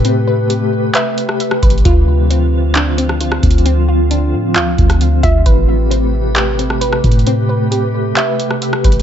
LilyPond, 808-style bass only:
\new Staff \with { instrumentName = "808-style bass" } { \clef bass \time 4/4 \key a \minor \tempo 4 = 133 a,2 r4. a,,8 | d,2.~ d,8 d,8~ | d,4. a,8 d,8 d,4 d,8 | a,,2.~ a,,8 a,8~ |
a,2 r4. a,,8 | }